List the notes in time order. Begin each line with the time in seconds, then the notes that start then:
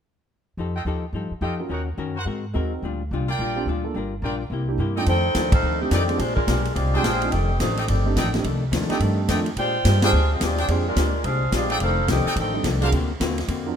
0.57 F2 F3 D#4 G4 A4
0.75 F4 A4 D#5 G5
0.85 D#2 F3 D#4 G4 A4
1.13 G2 F3 D#4 G4 A4
1.31 muted upright bass stroke
1.41 F2 F3 D#4 F4 G4 A4 D#5 G5
1.60 C#4 F4 F#4 A#4
1.69 D#2 D#3 C#4 D#4 F#4 A#4 C#5 F#5
1.97 F#2 D#3 C#4 F#4 A#4
2.16 F#4 A#4 C5 F#5
2.25 G#2 G#3 C4 F#4 A#4
2.54 D#2 G#3 C4 D#4 F#4 A#4
2.82 D2 A#2 G3 D4 F4
3.11 C2 A#2 G3 D4 F4
3.28 F4 A#4 D5 G5
3.39 A#1 A#2 G3 D4 F4
3.55 C4 D4 F4 G4
3.66 D2 A#2 G3 D4 F4
3.84 A#3 D4 F4 A4
3.94 G1 G3 D4 F4 A#4
4.22 A#1 G3 D4 F4 A#4 D5 G5
4.50 C2 C3 A#3 E4 G4
4.68 A#3 D4 E4 G4
4.78 G2 C3 A#3 E4 G4
4.96 F2 A3 D4 D#4 F4 A4 D5 G5
5.06 F2 D#3 A3 D4 D#4 A4 C5 G5, kick, ride
5.35 D#2 F2 D#3 A3 D4, kick, snare, hi-hat pedal, ride
5.52 D#4 A4 C5 F5, kick, ride
5.63 D2 F2 D#3 A3 D4
5.81 A3 C4 D4 D#4 G4 A4 D#5
5.91 F2 D#3 A3 C4 D4 D#4 G4 A4 D5 G5, kick, snare, hi-hat pedal, ride
6.09 G#3 C4 D4 F4 G4, ride
6.18 A#1 A#2 G#3 D4 F4 G4 C5, kick, ride
6.35 G#3 D4 F4 A#4, kick
6.47 B1 A#2 G#3 D4 G4, kick, snare, hi-hat pedal, ride
6.65 ride
6.74 C2 A#2 G#3 C4 D4 F4 G4 G#4 D5, kick, ride
6.93 G#3 C4 D4 F4 G4 G#4 C5 G5
7.02 A#1 A#2 G#3 D4 G4 G#4 C5 F5, kick, snare, hi-hat pedal, ride
7.22 A3 C4 D4 D#4 F4, ride
7.30 F1 F2 D#3 A3 C4 D4 G4 A4 D#5, kick, ride
7.60 A1 F2 D#3 A3 D4 D#4 G4 C5, kick, snare, hi-hat pedal, ride
7.77 D#4 A4 D5 G5, ride
7.87 G1 F2 D#3 A3 C4 D4 G4 A4 D5, kick, ride
8.05 A3 C4 D4 D#4 G4
8.16 A1 F2 D#3 A3 D4 D#4 A4 D5 G5, kick, snare, hi-hat pedal, ride
8.34 A3 C4 D4 D#4 G4, snare, ride
8.44 C2 F2 D#3 A3 D4, kick, ride
8.71 D#2 F2 D#3 A3 D4, kick, snare, hi-hat pedal, ride
8.82 snare
8.89 A3 C4 D4 D#4 G4 A4 D5 G5, muted upright bass stroke, snare, ride
9.00 F2 G2 D#3 A3 D4, kick, ride
9.28 F2 D#3 A3 C4 D4 D#4 F4 A4 D5 G5, kick, snare, hi-hat pedal, ride
9.46 ride
9.56 A#2 G#3 D4 F4 G4 C5 D5 G5, kick, ride
9.85 G2 A#2 G#3 D4 G4, kick, snare, hi-hat pedal, ride
10.02 G#3 C4 D4 F4 G4 G#4 C5 F5 G5, snare, ride
10.12 D2 A#2 G#3 D4 G4
10.33 C4 F4 G#4 D#5
10.40 D#2 A#2 G#3 C4 D4 F4 G4 G#4 D5, kick, snare, hi-hat pedal, ride
10.58 D4 G#4 C5 G5, ride
10.68 F2 A#2 G#3 C4 D4 F4 G4 C5, kick, ride
10.87 G#3 D4 F4 A#4
10.96 D2 A#2 G#3 D4 G4, kick, snare, hi-hat pedal, ride
11.24 C2 A#2 G#3 D4 G#4 C5 F5, kick, ride
11.28 G4
11.52 A#1 A#2 G#3 C4 D4 F4 G4 G#4 D5, kick, snare, hi-hat pedal, ride
11.70 D#4 A4 D5 G5, ride
11.79 F1 F2 D#3 A3 D#4 C5, kick, ride
11.83 D4 A4 F5
12.08 C2 F2 D#3 A3 C4 D4 G4 A4 D#5, kick, snare, hi-hat pedal, ride
12.26 D#4 A4 D5 G5, muted upright bass stroke
12.36 A1 F2 D#3 A3 D4 A4 C5, kick, ride
12.40 D#4 G5
12.53 G3 C4 D4 D#4 A4
12.63 C2 F2 D#3 A3 D4, kick, snare, hi-hat pedal, ride
12.81 F#3 C4 D4 F4 G#4 A#4 C5 F5, ride
12.92 D2 D3 A#3 C4 F#4, kick, ride
13.20 D#2 D3 A#3 C4 F#4, kick, snare, hi-hat pedal, ride
13.30 snare
13.38 snare, ride
13.48 F2 D3 A#3 C4 F#4, kick, ride
13.66 F#3 C4 D4 F4 A#4